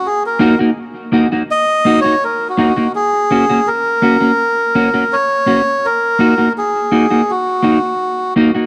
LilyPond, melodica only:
\new Staff \with { instrumentName = "Melodica" } { \time 4/4 \key fis \major \tempo 4 = 83 gis'16 ais'8 r4 r16 \tuplet 3/2 { dis''4 cis''8 ais'8 fis'4 } | gis'4 ais'2 cis''4 | ais'4 gis'4 fis'4. r8 | }